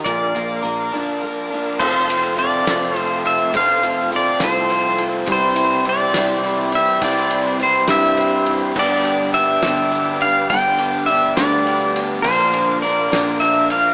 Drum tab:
CC |------|x-----|------|------|
RD |------|-xxxxx|xxxxxx|xxxxxx|
HH |xxx---|------|------|------|
SD |------|---o--|---o--|---o--|
BD |o-----|o-----|o--o--|o-----|

CC |------|x-----|------|------|
RD |xxxxxx|-xxxxx|xxxxxx|xxxxxx|
HH |------|------|------|------|
SD |---o--|---o--|---o--|---o--|
BD |o--o--|o-----|o--o--|o-----|